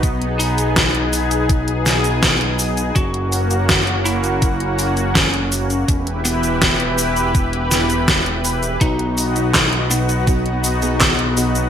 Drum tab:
HH |xxoxxxoxxxoxxxox|xxoxxxoxxxoxxxox|xxoxxxoxxxoxxxox|xxoxxxoxxxoxxxox|
SH |x-xxx-xxx-xxx-xx|x-xxx-xxx-xxx-xx|x-xxx-xxx-xxx-xx|x-xxx-xxx-xxx-xx|
CP |----------------|----------------|----------------|----x-------x---|
SD |----o-----o-o---|----o-------o---|----o-----o-o---|----o-------o---|
BD |o---o---o---o---|o---o---o---o---|o---o---o---o---|o---o---o---o---|